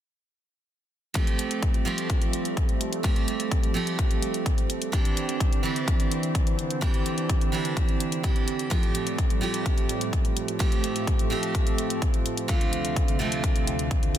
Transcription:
1.14 steel-string acoustic guitar F3 A3 C4 G4, analog synth pad F3 G3 A3, kick, closed hi-hat
1.27 closed hi-hat
1.39 closed hi-hat
1.51 closed hi-hat
1.63 kick, closed hi-hat
1.74 closed hi-hat
1.85 steel-string acoustic guitar F3 A3 C4 G4
1.98 closed hi-hat
2.10 kick, closed hi-hat
2.22 closed hi-hat
2.33 closed hi-hat
2.45 closed hi-hat
2.57 kick, closed hi-hat
2.69 closed hi-hat
2.81 closed hi-hat
2.93 closed hi-hat
3.03 steel-string acoustic guitar F3 A3 C4 G4, kick, closed hi-hat
3.16 closed hi-hat
3.28 closed hi-hat
3.40 closed hi-hat
3.51 kick, closed hi-hat
3.63 closed hi-hat
3.74 steel-string acoustic guitar F3 A3 C4 G4
3.87 closed hi-hat
3.99 kick, closed hi-hat
4.11 closed hi-hat
4.22 closed hi-hat
4.34 closed hi-hat
4.46 kick, closed hi-hat
4.58 closed hi-hat
4.70 closed hi-hat
4.82 closed hi-hat
4.92 analog synth pad D3 E3 C4, steel-string acoustic guitar E3 C4 D4 G4, kick, closed hi-hat
5.05 closed hi-hat
5.17 closed hi-hat
5.29 closed hi-hat
5.40 kick, closed hi-hat
5.53 closed hi-hat
5.63 steel-string acoustic guitar E3 C4 D4 G4
5.76 closed hi-hat
5.88 kick, closed hi-hat
6.00 closed hi-hat
6.11 closed hi-hat
6.23 closed hi-hat
6.35 kick, closed hi-hat
6.47 closed hi-hat
6.59 closed hi-hat
6.70 closed hi-hat
6.81 steel-string acoustic guitar E3 C4 D4 G4, kick, closed hi-hat
6.94 closed hi-hat
7.06 closed hi-hat
7.18 closed hi-hat
7.29 kick, closed hi-hat
7.41 closed hi-hat
7.52 steel-string acoustic guitar E3 C4 D4 G4
7.65 closed hi-hat
7.77 kick, closed hi-hat
7.89 closed hi-hat
8.00 closed hi-hat
8.12 closed hi-hat
8.23 steel-string acoustic guitar E3 C4 D4 G4, kick, closed hi-hat
8.36 closed hi-hat
8.48 closed hi-hat
8.59 closed hi-hat
8.70 analog synth pad A2 F3 G3, steel-string acoustic guitar F3 A3 C4 G4, kick, closed hi-hat
8.83 closed hi-hat
8.95 closed hi-hat
9.07 closed hi-hat
9.18 kick, closed hi-hat
9.30 closed hi-hat
9.41 steel-string acoustic guitar F3 A3 C4 G4
9.54 closed hi-hat
9.66 kick, closed hi-hat
9.78 closed hi-hat
9.89 closed hi-hat
10.01 closed hi-hat
10.13 kick, closed hi-hat
10.25 closed hi-hat
10.37 closed hi-hat
10.48 closed hi-hat
10.59 steel-string acoustic guitar F3 A3 C4 G4, analog synth pad A3, kick, closed hi-hat
10.72 closed hi-hat
10.84 closed hi-hat
10.96 closed hi-hat
11.07 kick, closed hi-hat
11.19 closed hi-hat
11.30 steel-string acoustic guitar F3 A3 C4 G4
11.43 closed hi-hat
11.55 kick, closed hi-hat
11.67 closed hi-hat
11.78 closed hi-hat
11.90 closed hi-hat
12.02 kick, closed hi-hat
12.14 closed hi-hat
12.26 closed hi-hat
12.37 closed hi-hat
12.48 analog synth pad D2 C3, steel-string acoustic guitar D3 A3 C4 F4, kick, closed hi-hat
12.61 closed hi-hat
12.73 closed hi-hat
12.85 closed hi-hat
12.96 kick, closed hi-hat
13.08 closed hi-hat
13.19 steel-string acoustic guitar D3 A3 C4 F4
13.32 closed hi-hat
13.44 kick, closed hi-hat
13.56 closed hi-hat
13.67 closed hi-hat
13.79 closed hi-hat
13.91 kick, closed hi-hat
14.03 closed hi-hat
14.15 closed hi-hat

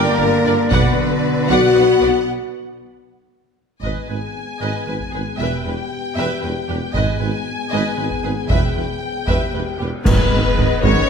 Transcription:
Already playing: cello section D3, french horn section A#3, woodwind section D4 G4 A#4 D5, viola section A#4 D5, violin section A#4 G5
0.19 tuba G1, double bass section G1, viola section G4 A#4, violin section A#4
0.45 double bass section G1, tuba G1, viola section A#4, violin section D5
0.70 tuba B1, double bass section B1, timpani B2, cello section D3, french horn section B3, woodwind section F#4 B4, violin section B4 F#5, viola section B4 D5, taiko
1.48 tuba B1, double bass section B1, cello section B3, french horn section F#4, viola section B4 D5, violin section F#5
1.75 tuba B1, double bass section B1, viola section F#4 B4, violin section B4
2.01 tuba B1, double bass section B1, viola section B4, violin section D5
3.83 double bass section G#1, tuba G#1, cello section G#2, french horn section B3 G#4, viola section B4, violin section D#5 G#5, taiko
4.09 tuba G#1, cello section G#2, violin section B4, viola section B4
4.60 tuba G#1, cello section G#2, viola section B4, violin section D#5
4.87 tuba G#1, cello section G#2, violin section B4, viola section B4
5.00 taiko
5.12 tuba G#1, cello section G#2, violin section G#4, viola section B4
5.38 double bass section E1, tuba E1, cello section E2, french horn section G4, viola section B4, violin section E5 G5
5.64 tuba E1, cello section E2, violin section B4, viola section B4
6.16 tuba E1, cello section E2, viola section B4, violin section E5
6.42 tuba E1, cello section E2, violin section B4, viola section B4
6.69 tuba E1, cello section E2, violin section G4, viola section B4
6.94 double bass section G#1, tuba G#1, cello section G#2, french horn section B3 G#4, viola section B4, violin section D#5 G#5, taiko
7.20 tuba G#1, cello section G#2, violin section B4, viola section B4
7.71 tuba G#1, cello section G#2, viola section B4, violin section D#5
7.98 tuba G#1, cello section G#2, violin section B4, viola section B4
8.11 taiko
8.24 tuba G#1, cello section G#2, violin section G#4, viola section B4
8.49 tuba E1, double bass section E1, cello section E2, viola section B4, violin section E5 G5, taiko
8.75 tuba E1, cello section E2, violin section B4, viola section B4
9.27 tuba E1, cello section E2, french horn section G4, viola section B4, violin section E5, taiko
9.53 tuba E1, cello section E2, viola section B4, violin section B4
9.79 tuba E1, cello section E2, violin section G4, viola section B4
10.04 tuba G#1, double bass section G#1, cello section G#2, viola section D#3 G#3, woodwind section G#3 G#4 B4 D#5, violin section B3 B4, french horn section B3, concert bass drum, taiko, crash, impact
10.31 tuba G#1, double bass section G#1, cello section G#2, viola section D#3
10.57 tuba G#1, double bass section G#1, cello section G#2, viola section D#3, taiko low
10.83 tuba G#1, double bass section G#1, cello section G#2, viola section D#3, french horn section C#4, violin section C#5, taiko

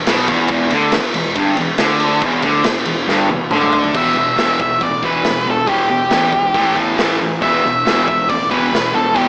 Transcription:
0.07 picked electric bass B1, distorted electric guitar B2, snare, ride
0.28 picked electric bass E1, distorted electric guitar E2, kick, ride
0.48 picked electric bass E1, distorted electric guitar E2, kick, ride
0.70 picked electric bass D2, distorted electric guitar D3, ride
0.92 picked electric bass E1, distorted electric guitar E2, snare, ride
1.14 picked electric bass E1, distorted electric guitar E2, ride
1.36 picked electric bass G1, distorted electric guitar G2, kick, ride
1.57 picked electric bass E1, distorted electric guitar E2, ride
1.78 picked electric bass D2, distorted electric guitar D3, snare, ride
2.00 ride
2.22 picked electric bass E1, distorted electric guitar E2, kick, ride
2.42 picked electric bass D2, distorted electric guitar D3, kick, ride
2.63 picked electric bass E1, distorted electric guitar E2, snare, ride
2.85 picked electric bass E1, distorted electric guitar E2, ride
3.07 picked electric bass G1, distorted electric guitar G2, snare
3.30 picked electric bass E1, distorted electric guitar E2, high tom
3.50 picked electric bass D2, distorted electric guitar D3, mid tom
3.61 mid tom
3.73 floor tom
3.84 floor tom
3.94 picked electric bass E1, distorted electric guitar E2 B2 E3, lead electric guitar E5, kick, crash
4.15 picked electric bass E1, distorted electric guitar E2 B2
4.37 picked electric bass E1, distorted electric guitar E2 B2 E3, snare, open hi-hat
4.60 picked electric bass E1, distorted electric guitar E2 B2, lead electric guitar E5, kick
4.80 picked electric bass A1, distorted electric guitar E2 B2, lead electric guitar D5, kick, open hi-hat
5.02 picked electric bass E1, distorted electric guitar E2 B2 E3, lead electric guitar B4, kick
5.24 picked electric bass E1, distorted electric guitar E2 B2, snare, open hi-hat
5.46 picked electric bass E1, distorted electric guitar E2 B2
5.51 lead electric guitar A4
5.67 picked electric bass E1, distorted electric guitar E2 B2 E3, lead electric guitar G4, kick, open hi-hat
5.89 distorted electric guitar E2 B2, lead electric guitar G4
6.09 picked electric bass A1, distorted electric guitar E2 B2 E3, snare, open hi-hat
6.32 picked electric bass E1, distorted electric guitar E2 B2, kick
6.54 picked electric bass A1, distorted electric guitar A2 E3 A3, kick, open hi-hat
6.74 picked electric bass E2, distorted electric guitar A2 E3 A3, kick
6.97 picked electric bass A1, distorted electric guitar A2 E3 A3, snare, open hi-hat
7.19 picked electric bass A1, distorted electric guitar A2 E3
7.41 picked electric bass E1, distorted electric guitar E2 B2 E3, lead electric guitar E5, kick, open hi-hat
7.65 picked electric bass E1, distorted electric guitar E2 B2
7.85 picked electric bass E1, distorted electric guitar E2 B2 E3, snare, open hi-hat
8.07 picked electric bass E1, distorted electric guitar E2 B2, lead electric guitar E5, kick
8.29 picked electric bass A1, distorted electric guitar E2 B2, lead electric guitar D5, kick, open hi-hat
8.50 picked electric bass E1, distorted electric guitar E2 B2 E3, lead electric guitar B4, kick
8.72 picked electric bass E1, distorted electric guitar E2 B2, snare, open hi-hat
8.93 picked electric bass E1, distorted electric guitar E2 B2, lead electric guitar A4
9.14 picked electric bass E1, distorted electric guitar E2 B2 E3, lead electric guitar G4, kick, open hi-hat

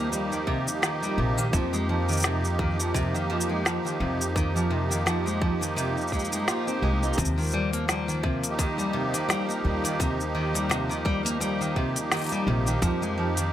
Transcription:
Already playing: upright bass D#2, accordion F3 A#3 D#4 G4, steel-string acoustic guitar A#3
0.12 steel-string acoustic guitar G3, shaker
0.32 steel-string acoustic guitar D#3, shaker
0.47 steel-string acoustic guitar C3, kick
0.68 shaker
0.82 steel-string acoustic guitar D#3, snare, shaker
1.03 steel-string acoustic guitar G3, shaker
1.18 upright bass A#1, steel-string acoustic guitar C3
1.37 steel-string acoustic guitar D#3, shaker
1.53 upright bass F2, steel-string acoustic guitar F3, accordion F3, kick, shaker
1.73 steel-string acoustic guitar G#3, shaker
1.89 steel-string acoustic guitar F3
2.09 steel-string acoustic guitar D#3, shaker
2.12 shaker
2.17 shaker
2.20 shaker
2.22 steel-string acoustic guitar C3, snare, shaker
2.25 shaker
2.45 shaker
2.59 steel-string acoustic guitar D#3, kick
2.79 steel-string acoustic guitar F3, shaker
2.94 steel-string acoustic guitar C3, kick, shaker
3.14 steel-string acoustic guitar D#3, shaker
3.30 steel-string acoustic guitar F3
3.41 shaker
3.49 steel-string acoustic guitar G#3
3.65 steel-string acoustic guitar F3, snare, shaker
3.85 steel-string acoustic guitar D#3, shaker
4.00 upright bass F2, steel-string acoustic guitar C3
4.21 shaker
4.36 steel-string acoustic guitar D#3, kick, shaker
4.55 steel-string acoustic guitar F3, shaker
4.70 steel-string acoustic guitar C3
4.90 steel-string acoustic guitar D#3, shaker
5.06 steel-string acoustic guitar F3, snare, shaker
5.26 steel-string acoustic guitar G#3, shaker
5.41 steel-string acoustic guitar F3, kick
5.61 steel-string acoustic guitar D#3, shaker
5.76 steel-string acoustic guitar C3, shaker
5.97 shaker
6.01 shaker
6.08 shaker
6.12 steel-string acoustic guitar G#3, kick, shaker
6.19 shaker
6.25 shaker
6.32 steel-string acoustic guitar G#3, shaker
6.47 upright bass A#2, steel-string acoustic guitar F4, snare, shaker
6.67 steel-string acoustic guitar C4, shaker
6.82 upright bass C2, steel-string acoustic guitar G#3
7.03 steel-string acoustic guitar D#4, shaker
7.13 shaker
7.17 upright bass D#2, steel-string acoustic guitar C3, kick, open hi-hat, shaker
7.25 shaker
7.38 steel-string acoustic guitar D#3, accordion A#3, shaker
7.41 shaker
7.42 shaker
7.44 shaker
7.46 shaker
7.48 shaker
7.50 shaker
7.52 steel-string acoustic guitar G3, shaker
7.73 steel-string acoustic guitar A#3, open hi-hat
7.88 steel-string acoustic guitar G3, snare, open hi-hat, shaker
8.08 steel-string acoustic guitar D#3, shaker
8.23 steel-string acoustic guitar C3, kick
8.44 open hi-hat, shaker
8.49 accordion D#4 G4
8.58 steel-string acoustic guitar D#3, kick, open hi-hat, shaker
8.78 steel-string acoustic guitar G3, shaker
8.93 steel-string acoustic guitar C3
9.13 steel-string acoustic guitar D#3, open hi-hat, shaker
9.29 steel-string acoustic guitar G3, snare, open hi-hat, shaker
9.49 steel-string acoustic guitar A#3, shaker
9.64 upright bass D#2, steel-string acoustic guitar G3
9.84 steel-string acoustic guitar D#3, open hi-hat, shaker
10.00 steel-string acoustic guitar C3, kick, open hi-hat, shaker
10.21 shaker
10.35 steel-string acoustic guitar D#3
10.54 steel-string acoustic guitar G3, open hi-hat, shaker
10.69 steel-string acoustic guitar C3, snare, open hi-hat, shaker
10.89 steel-string acoustic guitar D#3, shaker
11.05 steel-string acoustic guitar G3, kick
11.25 steel-string acoustic guitar A#3, open hi-hat, shaker
11.40 steel-string acoustic guitar G3, open hi-hat, shaker
11.61 steel-string acoustic guitar D#3, shaker
11.76 steel-string acoustic guitar C3, kick
11.96 open hi-hat, shaker
12.12 steel-string acoustic guitar D#3, snare, open hi-hat, shaker
12.14 open hi-hat
12.17 open hi-hat
12.19 open hi-hat
12.22 open hi-hat
12.24 open hi-hat
12.26 open hi-hat
12.29 steel-string acoustic guitar G3, open hi-hat, shaker
12.47 upright bass A#1, steel-string acoustic guitar C3
12.67 steel-string acoustic guitar D#3, shaker
12.82 upright bass F2, steel-string acoustic guitar F3, kick, open hi-hat, shaker
13.02 steel-string acoustic guitar G#3, shaker
13.18 steel-string acoustic guitar F3
13.37 steel-string acoustic guitar D#3, open hi-hat, shaker

